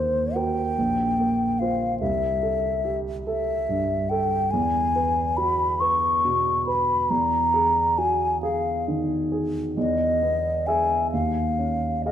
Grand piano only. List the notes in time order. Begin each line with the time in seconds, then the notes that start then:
Already playing: D#2 A#3
0.36 F#4 A#4
0.78 A#1
1.19 A#3
1.61 F4 C5
2.01 C2
2.43 A4
2.85 G4
3.27 A4
3.69 G2
4.11 A4
4.53 E2
4.96 B4
5.38 F#4
5.81 B4
6.24 B2
6.67 B4
7.10 E2
7.54 G#4
7.98 F#4
8.43 G#4
8.88 D#3
9.32 G#4
9.77 E2
10.22 B3
10.68 G#4 E5
11.13 D#2
11.59 C#4
12.06 G#4 F5